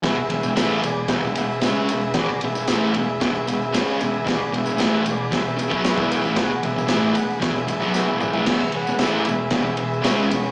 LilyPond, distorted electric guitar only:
\new Staff \with { instrumentName = "Distorted electric guitar" } { \clef bass \time 4/4 \key e \mixolydian \tempo 4 = 114 <e, b,>16 r16 <e, b,>16 <e, b,>16 <a, e a>8 <e, b,>8 <e, b,>16 <e, b,>16 <e, b,>8 <cis gis cis'>8 <e, b,>8 | <e, b,>16 r16 <e, b,>16 <e, b,>16 <a, e a>8 <e, b,>8 <e, b,>16 <e, b,>16 <e, b,>8 <cis gis cis'>8 <e, b,>8 | <e, b,>16 r16 <e, b,>16 <e, b,>16 <a, e a>8 <e, b,>8 <e, b,>16 <e, b,>16 <e, b,>16 <b, fis b>8 <e, b, e>8 <a, e>16 | <e, b,>16 r16 <e, b,>16 <e, b,>16 <a, e a>8 <e, b,>8 <e, b,>16 <e, b,>16 <e, b,>16 <b, fis b>8 <e, b, e>8 <a, e>16 |
<e, b,>16 r16 <e, b,>16 <e, b,>16 <a, e a>8 <e, b,>8 <e, b,>16 <e, b,>16 <e, b,>8 <cis gis cis'>8 <e, b,>8 | }